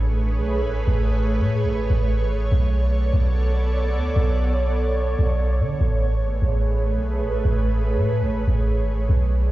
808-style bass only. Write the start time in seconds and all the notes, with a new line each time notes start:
Already playing: A1
0.36 B1
0.62 A1
0.87 A1
1.39 A2
1.64 A1
1.90 A1
2.21 G#1
2.36 A1
2.52 B1
3.13 B1
3.96 D2
4.16 B1
5.19 B1
5.60 D3
5.81 A1
6.22 G#1
6.32 A1
6.42 A1
6.93 B1
7.19 A1
7.45 A1
7.96 A2
8.22 A1
8.48 A1
8.79 G#1
8.94 A1
9.09 B1